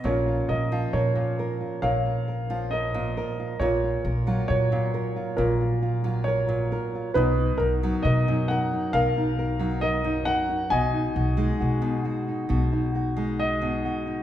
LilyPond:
<<
  \new Staff \with { instrumentName = "Upright piano" } { \time 4/4 \key ais \phrygian \tempo 4 = 67 << { cis''8 dis''8 cis''4 eis''4 dis''4 | cis''4 cis''4 ais'4 cis''4 | b'8 ais'8 dis''8 fis''8 eis''4 dis''8 fis''8 | gis''4. r4. dis''4 | } \\ { eis'2 cis''2 | eis'2 eis'2 | dis'2 ais'2 | dis''2 r2 | } >> }
  \new Staff \with { instrumentName = "Nylon-string guitar" } { \time 4/4 \key ais \phrygian << { <eis cis' eis' ais'>16 eis'16 ais'16 eis'16 ais'16 eis'16 ais'16 eis'16 ais'16 eis'16 ais'16 eis'16 ais'16 eis'16 ais'16 eis'16 | ais'16 eis'16 ais'16 eis'16 ais'16 eis'16 ais'16 eis'16 eis'16 eis'16 eis'16 eis'16 ais'16 eis'16 ais'16 eis'16 | r16 dis'16 dis'16 dis'16 ais'16 dis'16 ais'16 dis'16 ais'16 dis'16 ais'16 dis'16 ais'16 dis'16 ais'16 dis'16 | fis'16 dis'16 fis'16 dis'16 fis'16 dis'16 fis'16 dis'16 fis'16 dis'16 fis'16 dis'16 fis'16 dis'16 fis'16 dis'16 | } \\ { ais,8. eis8 ais,8. ais,8. eis8 ais,8. | ais,8. fis8 ais,8. ais,8. fis8 ais,8. | b,8. fis8 fis,8. b,8. fis8 fis,8. | b,8. gis8 b,8. b,8. gis8 b,8. | } >> }
  \new Staff \with { instrumentName = "Upright bass" } { \clef bass \time 4/4 \key ais \phrygian ais,,8 ais,,8 ais,4 ais,,2 | ais,,8 ais,,8 ais,4 ais,,2 | b,,8 b,,8 b,4 b,,2 | b,,8 b,,8 b,4 b,,2 | }
>>